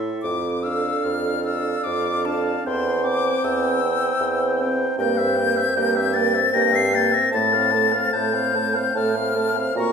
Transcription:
0.00 0.14 A2 medium
0.00 0.23 E4 medium
0.00 0.23 A4 medium
0.00 0.22 E5 medium
0.22 0.95 F2 medium
0.22 0.64 D6 loud
0.63 1.43 D4 medium
0.63 1.43 A4 medium
0.63 1.43 F5 medium
0.63 1.05 E6 loud
1.04 1.76 F2 medium
1.04 1.43 F6 loud
1.44 2.24 D4 medium
1.44 2.24 A4 medium
1.44 2.24 F5 medium
1.44 1.85 E6 loud
1.84 2.57 F2 loud
1.84 2.27 D6 loud
2.25 2.64 D4 medium
2.25 2.66 A4 medium
2.25 2.65 F5 medium
2.25 2.66 A5 loud
2.65 3.35 E2 loud
2.65 3.04 C4 medium
2.65 3.05 C5 medium
2.65 3.04 G5 medium
2.65 3.06 C6 loud
3.04 3.81 C4 medium
3.04 3.82 C5 medium
3.04 3.81 G5 medium
3.04 3.46 D6 loud
3.44 4.12 E2 medium
3.44 4.73 E6 loud
3.83 4.58 C4 medium
3.83 4.59 C5 medium
3.83 4.59 G5 medium
4.20 4.89 E2 loud
4.61 4.98 C4 medium
4.61 4.98 C5 medium
4.61 4.98 G5 medium
4.98 5.67 G2 loud
4.98 5.21 A#3 medium
4.98 5.21 A#4 medium
4.98 5.19 G5 medium
4.98 6.15 G6 loud
5.18 5.41 C4 medium
5.18 5.40 C5 medium
5.18 5.38 E5 medium
5.36 5.59 A#3 medium
5.36 5.61 A#4 medium
5.36 5.58 G5 medium
5.57 5.77 C4 medium
5.57 5.76 C5 medium
5.57 5.76 E5 medium
5.76 6.45 G2 loud
5.76 5.98 A#3 medium
5.76 5.97 A#4 medium
5.76 5.97 G5 medium
5.96 6.17 C4 medium
5.96 6.17 C5 medium
5.96 6.18 E5 medium
6.14 6.36 A#3 medium
6.14 6.36 A#4 medium
6.14 6.36 G5 medium
6.14 6.55 A6 loud
6.34 6.54 C4 medium
6.34 6.53 C5 medium
6.34 6.52 E5 medium
6.53 7.17 G2 loud
6.53 6.77 A#3 medium
6.53 6.75 A#4 medium
6.53 6.74 G5 medium
6.53 6.77 A#6 loud
6.72 6.96 C4 medium
6.72 6.94 C5 medium
6.72 6.95 E5 medium
6.72 6.97 C7 loud
6.93 7.17 A#3 medium
6.93 7.15 A#4 medium
6.93 7.14 G5 medium
6.93 7.16 A6 loud
7.12 7.34 C4 medium
7.12 7.32 C5 medium
7.12 7.31 E5 medium
7.12 7.33 A#6 loud
7.32 8.05 A2 loud
7.32 7.56 A3 medium
7.32 7.56 A4 medium
7.32 7.54 A5 medium
7.32 8.15 A6 loud
7.53 7.76 C4 medium
7.53 7.76 C5 medium
7.53 7.73 F5 medium
7.71 7.97 A3 medium
7.71 7.96 A4 medium
7.71 7.93 A5 medium
7.92 8.14 C4 medium
7.92 8.15 C5 medium
7.92 8.12 F5 medium
8.13 8.86 A2 loud
8.13 8.35 A3 medium
8.13 8.37 A4 medium
8.13 8.36 A5 medium
8.13 8.99 G6 loud
8.34 8.56 C4 medium
8.34 8.56 C5 medium
8.34 8.57 F5 medium
8.54 8.77 A3 medium
8.54 8.77 A4 medium
8.54 8.76 A5 medium
8.74 8.95 C4 medium
8.74 8.96 C5 medium
8.74 8.95 F5 medium
8.95 9.66 A2 loud
8.95 9.17 A3 medium
8.95 9.17 A4 medium
8.95 9.17 A5 medium
8.95 9.77 F6 loud
9.15 9.37 C4 medium
9.15 9.38 C5 medium
9.15 9.37 F5 medium
9.35 9.58 A3 medium
9.35 9.58 A4 medium
9.35 9.58 A5 medium
9.56 9.75 C4 medium
9.56 9.76 C5 medium
9.56 9.76 F5 medium
9.75 9.93 A#2 loud
9.75 9.93 A#3 medium
9.75 9.93 F#4 medium
9.75 9.93 A#5 medium
9.75 9.93 C#6 loud

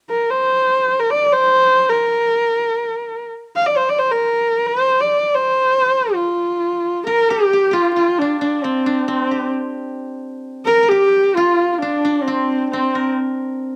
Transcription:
0.10 0.32 A#4 medium
0.30 1.01 C5 medium
1.00 1.12 A#4 medium
1.10 1.34 D5 medium
1.32 1.90 C5 loud
1.89 3.24 A#4 medium
3.56 3.67 F5 medium
3.66 3.78 D5 medium
3.77 3.90 C5 medium
3.89 4.00 D5 medium
3.99 4.13 C5 medium
4.12 4.68 A#4 medium
4.66 5.02 C5 loud
5.00 5.36 D5 medium
5.35 6.15 C5 medium
6.14 7.03 F4 medium
7.07 7.31 A#4 medium
7.07 9.19 A#4 medium
7.29 7.75 G4 medium
7.29 7.53 G4 medium
7.53 7.71 G4 medium
7.71 7.96 F4 medium
7.71 7.94 F4 medium
7.71 9.31 G4 medium
7.95 8.20 F4 medium
7.95 10.49 F4 medium
8.18 8.41 D4 medium
8.41 8.86 D4 medium
8.41 8.65 D4 medium
8.64 9.09 C4 medium
8.64 9.08 C4 medium
8.86 11.65 D4 medium
9.08 12.08 C4 medium
9.08 9.52 C4 medium
9.31 10.91 G4 medium
10.65 10.90 A#4 loud
10.65 10.82 A#4 medium
10.83 12.95 A#4 medium
10.89 11.37 G4 loud
10.89 13.26 G4 medium
11.35 11.73 F4 medium
11.35 13.76 F4 medium
11.73 11.80 F4 medium
11.78 12.25 D4 medium
11.82 12.04 D4 medium
12.05 13.76 D4 medium
12.23 12.69 C4 medium
12.28 12.73 C4 medium
12.70 13.12 C4 medium
12.70 13.76 C4 medium
12.95 13.76 A#4 medium

